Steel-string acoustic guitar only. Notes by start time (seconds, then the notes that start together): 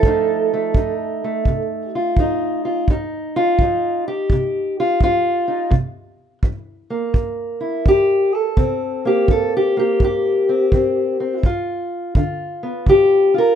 Already playing: A4
0.05 F2 F3 A3 D#4
0.54 A3
0.76 F3 D#4
1.24 A3
1.48 C3
1.95 F4
2.19 F3 D#4
2.65 F4
2.90 F2 D#4
3.36 F4
3.62 F3 D#4
4.08 G4
4.32 C3
4.80 F4
5.03 F3 F4
5.48 D#4
5.70 C3
6.44 E3
6.90 A#3
7.14 G2
7.61 E4
7.86 E3 G4
8.35 A4
8.57 C3 C4
9.05 A#3 G4
9.28 E3 A4
9.57 G4
9.77 A#3 G4
10.03 G2 G4
10.49 C4
10.73 E3 C4
11.20 C4
11.45 G2 F4
12.16 D3 F4
12.63 B3
12.87 D3 G4
13.34 F4
13.38 A#4